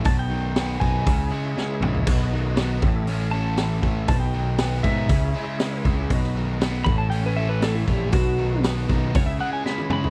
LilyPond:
<<
  \new Staff \with { instrumentName = "Electric slide guitar" } { \time 4/4 \key b \mixolydian \tempo 4 = 119 a''16 g''4~ g''16 gis''2 r8 | r2 r8 a''4. | a''16 g''4~ g''16 e''2 r8 | r4. b''16 a''16 g''16 b'16 e''16 b'16 a'16 e'16 g'8 |
fis'4 r4 cis''16 e''16 fis''16 gis''16 b''8 b''8 | }
  \new Staff \with { instrumentName = "Tonewheel organ" } { \time 4/4 \key b \mixolydian <fis dis' b' dis''>2 <e' gis' cis'' e''>2 | <dis' fis' b' dis''>4. <e' a' cis'' e''>2~ <e' a' cis'' e''>8 | \tuplet 3/2 { <e' g' c'' e''>8 <fis dis' b' dis''>4~ } <fis dis' b' dis''>4 <e' gis' cis'' e''>2 | <dis' fis' b' dis''>4. <cis' e' a' cis''>2~ <cis' e' a' cis''>8 |
<b dis' fis' b'>2 \tuplet 3/2 { <d' f' a' d''>8 <cis' e' gis' cis''>4~ } <cis' e' gis' cis''>4 | }
  \new Staff \with { instrumentName = "Overdriven electric guitar" } { \clef bass \time 4/4 \key b \mixolydian b,8 fis8 b8 dis8 cis8 cis'8 gis8 cis8 | b,8 fis8 b8 a,8 a8 cis'8 a8 e8 | b,8 fis8 b8 dis8 cis8 cis'8 gis8 cis8 | b,8 fis8 b8 a,8 a8 cis'8 a8 e8 |
b,8 fis8 b8 dis8 cis8 cis'8 gis8 cis8 | }
  \new Staff \with { instrumentName = "Overdriven electric guitar" } { \clef bass \time 4/4 \key b \mixolydian b,8 dis8 b8 dis'8 cis8 gis8 cis8 gis8 | b,8 dis8 b8 a,8 cis'8 a8 e8 a8 | b,8 dis8 b8 dis'8 cis8 gis8 cis8 gis8 | b,8 dis8 b8 a,8 cis'8 a8 e8 a8 |
b,8 dis8 b8 dis'8 cis8 gis8 cis8 gis8 | }
  \new Staff \with { instrumentName = "Picked electric bass" } { \clef bass \time 4/4 \key b \mixolydian b,,4. b,,8 cis,8 r4 ais,,8 | b,,4. a,,2 a,,8 | b,,4. gis,8 cis,8 r4 cis,8 | b,,4. a,,2 ais,,8 |
b,,4. b,,8 cis,8 r4 cis8 | }
  \new DrumStaff \with { instrumentName = "Drums" } \drummode { \time 4/4 <hho bd>4 <hho sn>8 bd8 <hho bd>4 sn8 toml16 tomfh16 | <cymc hho bd>4 <hho sn>8 bd8 hho4 <hho sn>8 bd8 | <hho bd>4 <hho sn>8 bd8 <hho bd>4 <hho sn>8 bd8 | <hho bd>16 sn8. <hho sn>8 bd8 hho4 <hho sn>8 bd8 |
<hho bd>4 <hho sn>8 bd8 <hho bd>4 sn16 tommh16 toml16 tomfh16 | }
>>